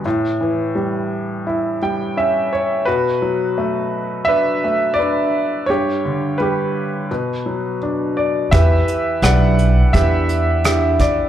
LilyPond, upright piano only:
<<
  \new Staff \with { instrumentName = "Upright piano" } { \time 4/4 \key b \minor \tempo 4 = 85 << { r2 r8 g''8 e''8 cis''8 | b'2 e''4 d''4 | cis''4 b'2 r8 d''8 | \key e \minor e''4 fis''4 e''4. d''8 | } \\ { r1 | fis'2 b'4 b'4 | g'4 g'4 r2 | <g' b'>4 <b' d''>4 <g' b'>2 | } >> }
  \new Staff \with { instrumentName = "Upright piano" } { \time 4/4 \key b \minor a,8 e8 g4 e'8 g8 cis'4 | b,8 fis8 a4 d'8 a8 d'4 | g,8 d8 g4 b,8 fis8 d'4 | \key e \minor e4 <d' e' g'>4 <d' e'>4 <d' e' g'>4 | }
>>